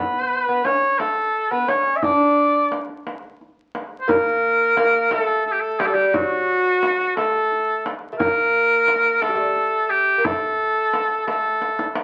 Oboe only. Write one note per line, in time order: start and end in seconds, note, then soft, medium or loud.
0.00 0.66 B4 medium
0.65 1.00 C#5 medium
0.99 1.52 A4 medium
1.51 1.70 B4 medium
1.69 1.98 C#5 medium
1.96 2.05 E5 medium
2.03 2.80 D5 medium
4.01 4.11 C5 medium
4.09 5.13 A#4 loud
5.11 5.45 A4 medium
5.46 5.54 A4 medium
5.52 5.62 G4 medium
5.60 5.81 A4 medium
5.80 5.88 G4 medium
5.86 5.95 A4 medium
5.94 6.07 G4 medium
6.07 6.15 G4 medium
6.14 7.16 F#4 loud
7.17 7.90 A4 loud
8.19 9.23 A#4 loud
9.21 9.92 A4 medium
9.90 10.26 G4 medium
10.25 11.27 A4 medium
11.28 12.01 A4 medium